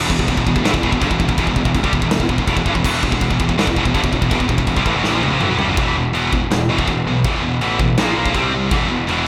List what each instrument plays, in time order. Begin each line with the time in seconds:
0.10 picked electric bass E1, distorted electric guitar E2 B2, kick
0.19 picked electric bass E1, distorted electric guitar E2 B2, kick
0.28 picked electric bass E1, distorted electric guitar E2 B2, kick, china
0.36 picked electric bass E1, distorted electric guitar E2 B2, kick
0.46 picked electric bass E1, distorted electric guitar E2 B2, kick
0.55 picked electric bass E1, distorted electric guitar E2 B2, kick
0.63 picked electric bass A1, distorted electric guitar A2 E3, snare, china
0.73 picked electric bass E1, distorted electric guitar E2 B2, kick
0.82 picked electric bass E1, distorted electric guitar E2 B2, kick
0.91 picked electric bass E1, distorted electric guitar E2 B2, kick
1.00 picked electric bass G1, distorted electric guitar G2 D3, kick, china
1.10 picked electric bass E1, distorted electric guitar E2 B2, kick
1.19 picked electric bass E1, distorted electric guitar E2 B2, kick
1.28 picked electric bass E1, distorted electric guitar E2 B2, kick
1.38 picked electric bass E1, distorted electric guitar E2 B2, kick, china
1.47 picked electric bass E1, distorted electric guitar E2 B2, kick
1.56 picked electric bass E1, distorted electric guitar E2 B2, kick
1.65 picked electric bass E1, distorted electric guitar E2 B2, kick
1.74 picked electric bass E1, distorted electric guitar E2 B2, kick, china
1.83 picked electric bass C2, distorted electric guitar C3 G3, kick
1.93 picked electric bass E1, distorted electric guitar E2 B2, kick
2.02 picked electric bass E1, distorted electric guitar E2 B2, kick
2.09 picked electric bass E1, distorted electric guitar E2 B2, snare, china
2.20 picked electric bass E1, distorted electric guitar E2 B2, kick
2.29 picked electric bass E1, distorted electric guitar E2 B2, kick
2.38 picked electric bass E1, distorted electric guitar E2 B2, kick
2.47 picked electric bass E1, distorted electric guitar E2 B2, kick, china
2.56 picked electric bass E1, distorted electric guitar E2 B2, kick
2.66 picked electric bass G1, distorted electric guitar G2 D3, kick
2.75 picked electric bass E1, distorted electric guitar E2 B2, kick
2.84 picked electric bass E1, distorted electric guitar E2 B2 E3, kick, crash, china
3.03 picked electric bass E1, distorted electric guitar E2 B2, kick
3.12 picked electric bass E1, distorted electric guitar E2 B2, kick
3.21 picked electric bass E1, distorted electric guitar E2 B2, kick, china
3.30 picked electric bass E1, distorted electric guitar E2 B2, kick
3.40 picked electric bass E1, distorted electric guitar E2 B2, kick
3.48 picked electric bass E1, distorted electric guitar E2 B2, kick
3.58 picked electric bass A1, distorted electric guitar A2 E3, snare, china
3.67 picked electric bass E1, distorted electric guitar E2 B2, kick
3.76 picked electric bass E1, distorted electric guitar E2 B2, kick
3.85 picked electric bass E1, distorted electric guitar E2 B2, kick
3.94 picked electric bass G1, distorted electric guitar G2 D3, kick, china
4.03 picked electric bass E1, distorted electric guitar E2 B2, kick
4.12 picked electric bass E1, distorted electric guitar E2 B2, kick
4.22 picked electric bass E1, distorted electric guitar E2 B2, kick
4.31 picked electric bass E1, distorted electric guitar E2 B2, kick, china
4.39 picked electric bass E1, distorted electric guitar E2 B2, kick
4.49 picked electric bass E1, distorted electric guitar E2 B2, kick
4.58 picked electric bass E1, distorted electric guitar E2 B2, kick
4.67 picked electric bass E1, distorted electric guitar E2 B2, kick, china
4.76 picked electric bass C2, distorted electric guitar C3 G3, kick
4.86 picked electric bass A1, distorted electric guitar A2 E3, kick
4.94 picked electric bass E1, distorted electric guitar E2 B2
5.02 picked electric bass A1, distorted electric guitar A2 E3, snare
5.12 picked electric bass A#1, distorted electric guitar A#2 F3
5.22 picked electric bass E1, distorted electric guitar E2 B2, high tom
5.31 picked electric bass A#1, distorted electric guitar A#2 F3
5.40 picked electric bass A1, distorted electric guitar A2 E3, mid tom
5.48 picked electric bass B1, distorted electric guitar B2 F#3
5.57 picked electric bass C2, distorted electric guitar C3 G3, floor tom
5.67 picked electric bass G1, distorted electric guitar G2 D3
5.77 picked electric bass E1, distorted electric guitar E2 B2 E3, kick, china
5.94 picked electric bass E1, distorted electric guitar E2 B2
6.13 picked electric bass E1, distorted electric guitar E2 B2 E3, china
6.33 picked electric bass E1, distorted electric guitar E2 B2, kick
6.49 picked electric bass E1, distorted electric guitar E2 B2, snare, china
6.68 picked electric bass E1, distorted electric guitar E2 B2 E3
6.79 kick
6.87 picked electric bass E1, distorted electric guitar E2 B2, kick, china
7.06 picked electric bass B1, distorted electric guitar E2 B2
7.24 picked electric bass E1, distorted electric guitar E2 B2 E3, kick, china
7.42 picked electric bass E1, distorted electric guitar E2 B2
7.61 picked electric bass A1, distorted electric guitar E2 B2 E3, china
7.80 distorted electric guitar E2 B2, kick
7.98 picked electric bass A#1, distorted electric guitar A#2 F3 A#3, snare, china
8.16 picked electric bass B1, distorted electric guitar A#2 F3 A#3
8.26 kick
8.35 picked electric bass C2, distorted electric guitar C3 G3 C4, kick, china
8.54 distorted electric guitar C3 G3
8.71 picked electric bass E1, distorted electric guitar E2 B2 E3, kick, china
8.90 picked electric bass E1, distorted electric guitar E2 B2
9.08 picked electric bass E1, distorted electric guitar E2 B2 E3, china